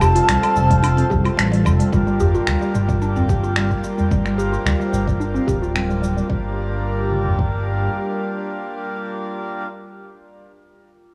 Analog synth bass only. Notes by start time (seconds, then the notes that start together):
Already playing: F1
0.29 C2
0.56 F1
1.11 C2
1.38 A1
1.66 F1
1.93 G1
2.48 D2
2.75 G1
4.11 G1
4.66 D2
4.93 G1
5.48 D1
6.30 G1